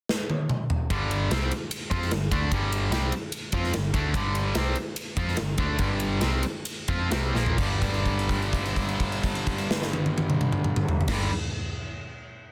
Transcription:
0.09 snare
0.30 high tom
0.49 mid tom
0.70 floor tom
0.90 G1 G2 D3 G3, kick, ride
1.11 ride
1.31 C2 C3 G3 C4, snare, ride
1.51 ride
1.71 ride
1.91 F2 F3 C4 F4, kick, ride
2.02 snare
2.11 G1 G2 D3, snare, ride
2.31 D2 D3 A3 D4, kick, ride
2.52 G1 G2 D3 G3, kick, ride
2.72 ride
2.91 C2 C3 G3 C4, snare, ride
3.12 ride
3.32 ride
3.52 F2 F3 C4 F4, kick, ride
3.64 snare
3.74 G1 G2 D3, snare, ride
3.94 D2 D3 A3 D4, kick, ride
4.14 G1 G2 D3 G3, kick, ride
4.35 ride
4.55 C2 C3 G3 C4, snare, ride
4.76 ride
4.96 ride
5.17 F2 F3 C4 F4, kick, ride
5.28 snare
5.37 G1 G2 D3, snare, ride
5.58 D2 D3 A3 D4, kick, ride
5.79 G1 G2 D3 G3, kick, ride
6.00 ride
6.21 C2 C3 G3 C4, snare, ride
6.43 ride
6.65 ride
6.88 F2 F3 C4 F4, kick, ride
7.11 C2 C3 G3 C4, snare, ride
7.34 A#1 A#2 F3 A#3, snare
7.46 floor tom
7.58 G1 G2 D3, kick, crash
7.62 G3
7.82 kick, crash
7.94 crash
8.06 kick, crash
8.19 crash
8.29 kick, crash
8.42 crash
8.53 kick, crash
8.65 crash
8.76 kick, crash
8.89 crash
9.00 kick, crash
9.12 crash
9.24 kick, crash
9.35 crash
9.47 kick, crash
9.58 crash
9.71 snare
9.82 snare
9.93 high tom
10.06 high tom
10.18 high tom
10.30 mid tom
10.41 mid tom
10.52 mid tom
10.64 mid tom
10.76 mid tom
10.88 floor tom
11.01 floor tom
11.08 G1 G2 D3, kick, snare, crash
11.13 G3

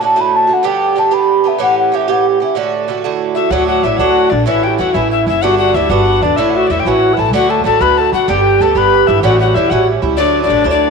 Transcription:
0.01 A2 D3 A3 F#4 A5
0.16 A2 D3 A3 F#4
0.20 B5
0.35 A5
0.47 D3 A3 F#4
0.53 F#5
0.63 G2 D3 B3 G4 G5
0.96 G2 D3 B3 G4 A5
1.11 G2 D3 B3 G4 B5
1.44 D3 B3 G4 E5
1.58 A2 E3 C#4 G4 F#5
1.79 F#5
1.92 A2 E3 C#4 G4 E5
2.08 A2 E3 C#4 G4 F#5
2.40 E3 C#4 G4 E5
2.55 A2 D3 A3 F#4 D5
2.88 A2 D3 A3 F#4
3.04 A2 D3 A3 F#4
3.35 D3 A3 E4 F#4 E5
3.50 D2 A2 F#3 A3 D4 F#4 F#5
3.67 F#4 F#5
3.84 A1 A2 F#3 A3 D4 E4 E5
3.97 D2 F#3 A3 D4 F#4 F#5
4.01 A2
4.30 A#1 F#3 A3 D4 D5
4.46 A1 A2 E3 C#4 E4 E5
4.64 G4 G5
4.78 E2 A2 E3 C#4 E4 F#5
4.82 F#4
4.94 A1 A2 E3 C#4 E4 E5
5.11 E4 E5
5.27 F#1 E3 C#4 E4 E5
5.42 G1 G2 D3 B3 D4 F#4 F#5
5.58 F#4 F#5
5.74 D2 G2 D3 B3 D4 E4 E5
5.89 G1 G2 D3 B3 D4 F#4 F#5
6.21 E2 D3 B3 D4 D5
6.36 A1 A2 D3 A3 E4 E5
6.50 F#5
6.55 F#4 E5
6.67 E2 A2 D3 E4 D5 E5
6.72 A3 E4
6.80 G5
6.85 A1 A2 E3 C#4 E4 F#4 F#5
7.13 E4 A4 B4
7.18 A1 E3 C#4 A5
7.33 D2 A2 D3 A3 F#4 F#5
7.49 A4 A5
7.64 A1 A2 D3 A3 F#4 A4 A5
7.80 D2 A2 D3 A3 F#4 B4 B5
7.98 A4 A5
8.12 D3 A3 F#4 F#5
8.28 G1 G2 D3 B3 G4 G5
8.60 D2 G2 D3 B3 G4 A4 A5
8.75 G1 G2 D3 B3 G4 B4 B5
9.07 G1 D3 B3 E4 G4 E5
9.23 A1 A2 G3 C#4 E4 F#4 F#5
9.40 F#4 F#5
9.54 E2 A2 G3 C#4 E4 E5
9.70 A1 A2 G3 C#4 E4 F#4 F#5
10.02 C#2 G3 C#4 E4
10.17 D2 A2 F#3 A3 D4 D5
10.42 E4 D5
10.46 A1 A2 F#3 D4
10.51 A3 D4
10.64 D2 A2 F#3 A3 D4 C#5
10.70 D4 D5

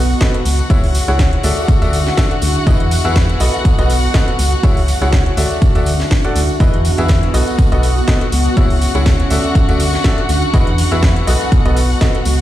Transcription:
Already playing: B1 B3 F#4 F#5
0.10 tambourine
0.21 A1 F#4 A4 B4 D#5, kick, snare, closed hi-hat, tambourine
0.34 closed hi-hat
0.45 C#2, open hi-hat, tambourine
0.59 closed hi-hat, tambourine
0.69 C#2 E4 G#4 C#5 E5, kick, closed hi-hat, tambourine
0.84 open hi-hat
0.95 open hi-hat, tambourine
1.08 C#2 E4 G#4 C#5 F#5, closed hi-hat, tambourine
1.19 kick, snare, closed hi-hat, tambourine
1.33 closed hi-hat
1.43 D2 F#4 A4 D5 E5, open hi-hat, tambourine
1.57 closed hi-hat, tambourine
1.68 kick, closed hi-hat, tambourine
1.82 D2 F#4 A4 D5 E5, closed hi-hat, tambourine
1.93 open hi-hat, tambourine
2.06 snare, tambourine
2.17 A1 F#4 A4 D5 E5, kick, snare, closed hi-hat, tambourine
2.31 closed hi-hat
2.42 D2, open hi-hat, tambourine
2.56 tambourine
2.67 E2 B3 E4 G#4 B4 D#5, kick, closed hi-hat, tambourine
2.80 closed hi-hat
2.91 open hi-hat, tambourine
3.05 E2 E4 G#4 B4 E5, tambourine
3.16 kick, snare, closed hi-hat, tambourine
3.29 closed hi-hat
3.40 B1 F#4 A4 B4 D#5, open hi-hat, tambourine
3.54 closed hi-hat, tambourine
3.65 kick, closed hi-hat, tambourine
3.78 B1 F#4 A4 B4 D#5, closed hi-hat, tambourine
3.90 open hi-hat, tambourine
4.03 tambourine
4.14 A1 F#4 A4 B4 D#5, kick, snare, closed hi-hat, tambourine
4.28 closed hi-hat
4.39 C#2, open hi-hat, tambourine
4.52 closed hi-hat, tambourine
4.63 C#2 E4 G#4 C#5 E5, kick, closed hi-hat, tambourine
4.77 E5, open hi-hat
4.88 open hi-hat, tambourine
5.02 C#2 E4 G#4 C#5 F#5, closed hi-hat, tambourine
5.13 kick, snare, closed hi-hat, tambourine
5.26 closed hi-hat
5.37 D2 F#4 A4 D5 E5, open hi-hat, tambourine
5.51 tambourine
5.62 kick, closed hi-hat, tambourine
5.75 D2 F#4 A4 D5 E5, closed hi-hat, tambourine
5.86 open hi-hat, tambourine
6.00 snare, tambourine
6.11 A1, kick, snare, closed hi-hat, tambourine
6.24 F#4 A4 D5 F#5, closed hi-hat
6.36 D2, open hi-hat, tambourine
6.49 closed hi-hat, tambourine
6.60 E2 B3 E4 F#4 G#4 B4 D#5 F#5, kick, closed hi-hat, tambourine
6.69 D#6
6.74 closed hi-hat
6.85 open hi-hat, tambourine
6.98 E2 E4 G#4 B4 E5, closed hi-hat, tambourine
7.08 kick, snare, closed hi-hat, tambourine
7.23 closed hi-hat
7.34 B1 F#4 A4 B4 D#5, open hi-hat, tambourine
7.47 closed hi-hat, tambourine
7.58 kick, closed hi-hat, tambourine
7.72 B1 F#4 A4 B4 D#5, closed hi-hat, tambourine
7.83 open hi-hat, tambourine
7.97 tambourine
8.08 A1 F#4 A4 B4 D#5, kick, snare, closed hi-hat, tambourine
8.21 closed hi-hat
8.32 C#2, open hi-hat, tambourine
8.46 tambourine
8.57 C#2 E4 G#4 C#5 E5, kick, closed hi-hat, tambourine
8.70 E5, open hi-hat
8.81 open hi-hat, tambourine
8.95 C#2 E4 G#4 C#5 F#5, closed hi-hat, tambourine
9.06 kick, snare, closed hi-hat, tambourine
9.20 closed hi-hat
9.30 D2 F#4 A4 D5 E5, open hi-hat, tambourine
9.44 closed hi-hat, tambourine
9.55 kick, closed hi-hat, tambourine
9.69 D2 F#4 A4 D5 E5, closed hi-hat, tambourine
9.80 open hi-hat, tambourine
9.93 snare, tambourine
10.04 A1 F#4 A4 D5 E5, kick, snare, closed hi-hat, tambourine
10.18 closed hi-hat
10.29 D2, open hi-hat, tambourine
10.42 closed hi-hat, tambourine
10.54 E2 B3 E4 G#4 B4 D#5, kick, closed hi-hat, tambourine
10.67 closed hi-hat
10.78 open hi-hat, tambourine
10.91 E2 E4 G#4 B4 E5, tambourine
11.03 kick, snare, closed hi-hat, tambourine
11.16 closed hi-hat
11.27 B1 F#4 A4 B4 D#5, open hi-hat, tambourine
11.41 closed hi-hat, tambourine
11.52 kick, closed hi-hat, tambourine
11.65 B1 F#4 A4 B4 D#5, closed hi-hat, tambourine
11.77 open hi-hat, tambourine
11.90 tambourine
12.01 A1 F#4 A4 B4 D#5, kick, snare, closed hi-hat, tambourine
12.15 closed hi-hat
12.25 C#2, open hi-hat, tambourine

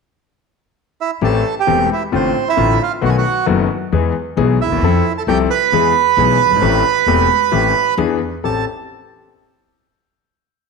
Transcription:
1.01 E4 E5
1.21 A1 A2 E3 A3 C4 G4 A4 A5
1.59 G4 G5
1.67 E1 E2 E3 A3 C4 G4
1.92 E4 E5
2.12 A1 A2 D3 A3 C4 F4 C5
2.48 E4 E5
2.57 A1 A2 D3 A3 C4 F4
2.82 F4 F5
3.01 B1 B2 D#3 A3 B3 F#4
3.06 F#5 G#5
3.18 F#4 F#5
3.46 F#1 F#2 D#3 A3 B3 F#4
3.92 E2 E3 G#3 B3 G#4
4.37 B1 B2 E3 G#3 B3 G#4
4.61 E4 E5
4.66 D2
4.71 D#2
4.77 E2
4.82 F2 F3 C4 E4 A4
5.18 A4 A5
5.27 C2 C3 F3 C4 E4 G4 A4 G5
5.50 B4 B5
5.72 E2 E3 G#3 B3 G#4
6.17 B1 B2 E3 G#3 B3 G#4
6.45 F#1
6.51 G1
6.56 G#1
6.62 A1 A2 E3 A3 C4 G4
7.06 E1 E2 E3 A3 C4 G4
7.51 A1 A2 E3 A3 C4 G4
7.97 E2 E3 B3 D4 G#4
8.44 A1 C4 G4 A4 A5

